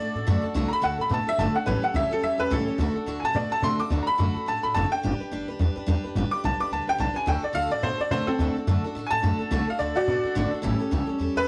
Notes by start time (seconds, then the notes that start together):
Already playing: D5
0.00 A3 D4 F#4 A4
0.15 A2 D4 F#4 A4
0.27 F#2 D3 A3 D4 F#4 A4
0.42 D4 F#4 A4, muted upright bass stroke
0.54 C2 D3 A3 D4 F#4 A4
0.68 A4 A#5
0.73 D4 F#4 B5
0.81 D2 D3 A3 D4 F#4 A4 F#5
0.98 A2 D4 F#4 A4 B5
1.09 B2 A3 D4 F#4 A4
1.14 A5
1.27 D4 F#4 A4 E5, muted upright bass stroke
1.38 G1 D3 A3 D4 F#4 A4 A5
1.54 D4 F#4 A4 F#5, muted upright bass stroke
1.66 A1 A2 E3 G3 C#4 G4 A4 B4
1.82 G3 C#4 G4 A4 F#5, muted upright bass stroke
1.94 C#2 A2 E3 G3 C#4 G4 A4 E5
2.09 G3 C#4 G4 A4, muted upright bass stroke
2.22 E2 G3 C#4 G4 A4 E5
2.38 E2 G3 C#4 G4 A4 B4
2.50 C#2 A2 E3 G3 C#4 G4 A4
2.65 G3 C#4 G4 A4, muted upright bass stroke
2.78 D2 D3 A3 D4 F#4 A4
2.94 D4 F#4 A4, muted upright bass stroke
3.06 D2 D3 A3 D4 F#4 A4
3.20 A2 A4 G#5
3.24 F#4 A5
3.33 B2 A3 D4 F#4 A4 D5
3.50 D4 F#4 A4 A5, muted upright bass stroke
3.62 C3 D3 A3 D4 F#4 A4 C6
3.79 D4 F#4 A4 D6, muted upright bass stroke
3.90 D2 D3 A3 D4 F#4 A4
4.03 A4 A#5
4.07 D4 F#4 B5, muted upright bass stroke
4.18 F#2 D3 A3 D4 F#4 A4
4.34 D4 F#4 A4, muted upright bass stroke
4.46 A2 A3 D4 F#4 A4 A5
4.62 A2 D4 F#4 A4 B5
4.75 F#1 D3 A3 D4 F#4 A4 A5
4.92 D4 F#4 A4 G5
5.03 G1 G3 D4 G4 B4
5.20 D4 G4 B4, muted upright bass stroke
5.31 G1 G3 D4 G4 B4
5.48 D2 D4 G4 B4
5.59 E2 G3 D4 G4 B4
5.76 D4 G4 B4, muted upright bass stroke
5.87 E2 G3 D4 G4 B4
6.04 D4 G4 B4, muted upright bass stroke
6.15 G1 G3 D4 G4 B4
6.31 G4 B4 D6
6.35 D4
6.44 B1 G3 D4 G4 B4 A5
6.60 D4 G4 B4 D6, muted upright bass stroke
6.71 D2 G3 D4 G4 B4 A5
6.87 D2 D4 G4 B4 G5
6.98 B1 G3 D4 G4 B4 A5
7.14 D4 G4 B4 G#5, muted upright bass stroke
7.26 D2 D3 A3 D4 F#4 A4 G5
7.43 F#4 A4 D5, muted upright bass stroke
7.53 D2 D3 A3 D4 F#4 A4 F5
7.70 A2 D4 F#4 A4 D5
7.81 B2 A3 D4 F#4 A4 C5
7.98 D4 F#4 A4 D5, muted upright bass stroke
8.11 C3 D3 A3 D4 F#4 A4 C5
8.27 C4 D4 F#4 A4, muted upright bass stroke
8.39 D2 D3 A3 D4 F#4 A4
8.55 D4 F#4 A4
8.67 F#2 D3 A3 D4 F#4 A4
8.84 D4 F#4 A4, muted upright bass stroke
8.95 A2 A3 D4 F#4 A4
9.07 G#5
9.11 A2 D4 F#4 A4 A5
9.22 F#2 D3 A3 D4 F#4 A4
9.39 D4 F#4 A4, muted upright bass stroke
9.51 C2 D3 A3 D4 F#4 A4
9.67 D4 A4 F5, muted upright bass stroke
9.79 D2 D3 A3 D4 F#4 A4 D5
9.95 A2 D4 F#4 A4 D5
10.06 B2 A3 D4 F#4 A4
10.24 D4 F#4 A4, muted upright bass stroke
10.35 G#1 D3 A3 D4 F#4 A4
10.51 D4 F#4 A4, muted upright bass stroke
10.62 A1 A2 E3 G3 C#4 G4 A4
10.79 G3 C#4 G4 A4
10.91 C#2 A2 E3 G3 C#4 G4 A4
11.06 G3 C#4 G4 A4, muted upright bass stroke
11.18 E2 G3 C#4 G4 A4
11.36 E2 G3 C#4 G4 A4 B4